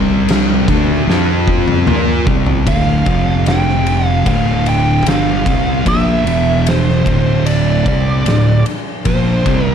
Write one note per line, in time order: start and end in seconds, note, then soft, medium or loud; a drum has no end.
0.00 0.64 C2 loud
0.00 0.67 C3 medium
0.00 0.67 G3 loud
0.00 0.68 C4 loud
0.28 snare loud
0.28 crash medium
0.68 1.05 D2 medium
0.68 1.07 D3 medium
0.68 1.07 A3 medium
0.68 1.08 D4 loud
0.68 kick loud
0.68 crash medium
1.07 1.83 F2 medium
1.07 1.86 F3 medium
1.07 1.87 C4 loud
1.07 1.86 F4 loud
1.07 snare medium
1.48 kick medium
1.68 mid tom medium
1.87 2.24 A#2 medium
1.87 2.26 A#3 medium
1.87 2.26 F4 medium
1.87 2.26 A#4 loud
1.87 mid tom medium
2.27 2.64 C2 loud
2.27 2.66 C3 loud
2.27 2.66 G3 loud
2.27 2.66 C4 loud
2.27 kick loud
2.46 floor tom medium
2.67 3.04 D1 medium
2.67 3.05 D2 medium
2.67 3.06 A2 medium
2.67 3.06 D3 loud
2.67 3.43 F5 loud
2.67 kick loud
2.67 ride medium
3.06 4.22 F1 medium
3.06 4.25 F2 loud
3.06 4.25 C3 loud
3.06 4.25 F3 loud
3.06 kick loud
3.06 ride medium
3.46 4.08 G5 loud
3.46 snare loud
3.46 ride medium
3.69 snare soft
3.87 ride medium
4.08 4.27 F5 loud
4.26 5.02 D1 medium
4.26 5.04 D2 medium
4.26 5.05 A2 medium
4.26 5.04 D3 medium
4.26 4.68 F5 medium
4.26 kick loud
4.26 ride medium
4.66 5.05 G5 loud
4.66 ride medium
5.05 5.43 G1 medium
5.05 5.44 G2 medium
5.05 5.44 D3 medium
5.05 5.45 G3 loud
5.05 5.83 F5 loud
5.05 snare loud
5.05 ride loud
5.45 5.83 C2 medium
5.45 5.84 C3 medium
5.45 5.84 G3 medium
5.45 5.85 C4 medium
5.45 kick loud
5.45 ride medium
5.85 6.23 A#1 medium
5.85 6.24 A#2 medium
5.85 6.24 F3 medium
5.85 6.24 A#3 loud
5.85 6.69 E5 medium
5.85 kick loud
5.85 ride medium
6.25 7.01 E1 medium
6.25 7.04 E2 loud
6.25 7.04 B2 medium
6.25 7.04 E3 loud
6.25 ride medium
6.67 7.47 C5 medium
6.67 snare loud
6.67 ride loud
6.89 snare soft
7.05 7.82 D1 loud
7.05 7.84 D2 medium
7.05 7.84 A2 medium
7.05 7.84 D3 medium
7.05 kick loud
7.05 ride medium
7.46 7.83 D5 medium
7.46 ride medium
7.84 8.23 C2 medium
7.84 8.24 C3 medium
7.84 8.24 G3 loud
7.84 8.24 C4 loud
7.84 8.63 D5 medium
7.84 kick medium
7.84 ride medium
8.25 8.63 D1 medium
8.25 8.57 D2 medium
8.25 8.57 A2 medium
8.25 snare loud
8.25 ride loud
8.66 ride medium
9.05 9.43 A#1 medium
9.05 9.44 A#2 medium
9.05 9.44 F3 loud
9.05 9.45 A#3 loud
9.05 9.66 C5 medium
9.05 kick loud
9.05 ride medium
9.45 9.75 C2 medium
9.45 9.75 C3 loud
9.45 9.75 G3 loud
9.45 9.75 C4 loud
9.45 kick loud
9.45 ride medium
9.66 9.75 A#4 medium